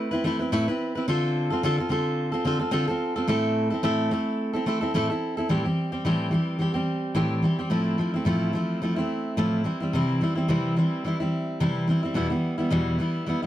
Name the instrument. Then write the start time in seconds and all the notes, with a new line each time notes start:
steel-string acoustic guitar
Already playing: A3 C4 E4
0.11 C4 E4 B4
0.24 A3 C4 E4 B4
0.39 C4 E4 B4
0.52 A2 A3 C4 E4 B4
0.68 C4 E4 B4
0.95 C4 E4 B4
1.08 D3 C4 F4 A4
1.50 C4 F4 A4
1.63 D3 C4 F4 A4
1.78 C4 F4 A4
1.89 D3 C4 F4 A4
2.32 C4 F4 A4
2.45 D3 C4 F4 A4
2.59 C4 F4 A4
2.71 D3 C4 F4 A4
2.88 C4 F4 A4
3.16 C4 F4 A4
3.28 A2 A3 C4 E4 A4
3.70 C4 E4 A4
3.83 A2 A3 C4 E4 A4
4.11 A3 C4 E4 A4
4.53 C4 E4 A4
4.66 A3 C4 E4 A4
4.81 C4 E4 A4
4.94 A2 A3 C4 E4 A4
5.09 C4 E4 A4
5.37 C4 E4 A4
5.49 A2 E3 G3 C4 G4
5.65 G3 C4 G4
5.92 G3 C4 G4
6.05 A2 E3 G3 C4 G4
6.31 E3 G3 C4 G4
6.59 E3 G3 C4 G4
6.74 G3 C4 G4
7.15 A2 E3 G3 C4 G4
7.42 E3 G3 C4 G4
7.59 G3 C4 G4
7.70 A2 F3 A3 C4 E4
7.98 F3 A3 C4 E4
8.14 A3 C4 E4
8.25 A2 F3 A3 C4 E4
8.53 F3 A3 C4 E4
8.82 F3 A3 C4 E4
8.96 A3 C4 E4
9.37 A2 F3 A3 C4 E4
9.64 E3 G3 C4 E4
9.80 G3 C4 E4
9.93 C3 E3 G3 C4 E4
10.21 E3 G3 C4 E4
10.35 G3 C4 E4
10.48 C3 E3 G3 C4 E4
10.76 E3 G3 C4 E4
11.04 E3 G3 C4 E4
11.20 G3 C4 E4
11.60 C3 E3 G3 C4 E4
11.88 E3 G3 C4 E4
12.03 G3 C4 E4
12.14 E2 B2 E3 G3 B3 E4
12.29 E3 G3 B3 E4
12.58 E3 G3 B3 E4
12.70 E2 B2 E3 G3 B3 E4
12.98 E3 G3 B3 E4
13.26 E3 G3 B3 E4
13.42 B3 E4